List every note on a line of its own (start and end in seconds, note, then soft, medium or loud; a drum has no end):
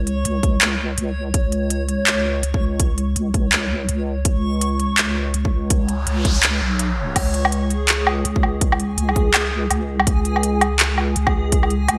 0.00 0.24 C#2 loud
0.00 7.17 C#5 medium
0.07 closed hi-hat soft
0.25 0.97 C#2 medium
0.25 closed hi-hat medium
0.43 kick loud
0.43 closed hi-hat soft
0.61 clap loud
0.61 closed hi-hat medium
0.98 1.33 C#2 loud
0.98 closed hi-hat medium
1.34 2.42 C#2 loud
1.34 kick loud
1.34 closed hi-hat medium
1.52 closed hi-hat soft
1.70 closed hi-hat medium
1.89 closed hi-hat soft
2.07 clap loud
2.07 closed hi-hat medium
2.43 3.15 C#2 medium
2.43 closed hi-hat medium
2.54 kick loud
2.80 kick loud
2.80 closed hi-hat medium
2.98 closed hi-hat soft
3.16 3.87 C#2 medium
3.16 closed hi-hat medium
3.34 kick loud
3.34 closed hi-hat soft
3.52 clap loud
3.52 closed hi-hat medium
3.89 4.24 C#2 medium
3.89 closed hi-hat medium
4.25 5.33 C#2 medium
4.25 kick loud
4.25 closed hi-hat medium
4.61 closed hi-hat medium
4.80 closed hi-hat soft
4.98 clap loud
4.98 closed hi-hat medium
5.34 6.06 C#2 loud
5.34 closed hi-hat medium
5.45 kick medium
5.70 kick loud
5.70 closed hi-hat medium
5.70 noise sweep medium
5.89 closed hi-hat soft
6.07 6.60 C#2 medium
6.07 closed hi-hat medium
6.25 kick medium
6.25 closed hi-hat soft
6.43 clap loud
6.43 closed hi-hat medium
6.61 7.15 B1 medium
6.79 closed hi-hat medium
7.16 8.24 C#2 loud
7.16 11.98 G#4 medium
7.16 kick loud
7.16 closed hi-hat medium
7.16 crash medium
7.16 low woodblock medium
7.34 closed hi-hat soft
7.45 low woodblock medium
7.52 closed hi-hat medium
7.70 closed hi-hat soft
7.89 clap loud
7.89 closed hi-hat medium
8.07 low woodblock medium
8.25 8.96 C#2 loud
8.25 closed hi-hat medium
8.36 kick loud
8.43 low woodblock medium
8.61 kick loud
8.61 closed hi-hat medium
8.72 low woodblock medium
8.80 closed hi-hat soft
8.98 9.69 C#2 medium
8.98 closed hi-hat medium
9.09 low woodblock soft
9.16 kick loud
9.16 closed hi-hat soft
9.34 clap loud
9.34 closed hi-hat medium
9.34 low woodblock medium
9.71 10.06 C#2 medium
9.71 closed hi-hat medium
9.71 low woodblock medium
10.00 low woodblock medium
10.07 11.15 C#2 loud
10.07 kick loud
10.07 closed hi-hat medium
10.25 closed hi-hat soft
10.36 low woodblock soft
10.43 closed hi-hat medium
10.61 closed hi-hat soft
10.61 low woodblock medium
10.80 clap loud
10.80 closed hi-hat medium
10.98 low woodblock soft
11.16 11.87 C#2 medium
11.16 closed hi-hat medium
11.27 kick loud
11.27 low woodblock medium
11.52 kick loud
11.52 closed hi-hat medium
11.63 low woodblock soft
11.70 closed hi-hat soft
11.88 11.98 C#2 medium
11.88 closed hi-hat medium
11.88 low woodblock medium